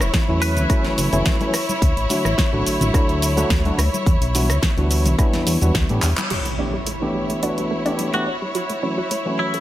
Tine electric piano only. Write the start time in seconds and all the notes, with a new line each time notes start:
0.28 E3 F#3 A3 C#4 E4
0.70 E3 F#3 A3 C#4 E4
1.12 E3 F#3 A3 C#4 E4
1.41 E3 F#3 A3 C#4 E4
2.10 D3 F#3 A3 D4 F#4
2.52 D3 F#3 A3 D4 F#4
2.94 D3 F#3 A3 D4 E4
3.36 D3 F#3 A3 D4 F#4
3.65 D3 F#3 A3 D4 F#4
4.34 E3 G3 B3 D4 F#4
4.77 E3 G3 B3 D4 F#4
5.18 E3 G3 B3 D4 E4
5.61 E3 G3 B3 D4 F#4
5.89 E3 G3 B3 D4 G4
6.59 E3 A3 B3 D4 G4
7.02 E3 A3 B3 D4 G4
7.42 E3 A3 B3 D4 F#4
7.85 E3 A3 B3 D4 G4
8.13 E3 A3 B3 D4 G4
8.82 E3 F#3 A3 C#4 F#4
9.25 E3 F#3 A3 C#4 F#4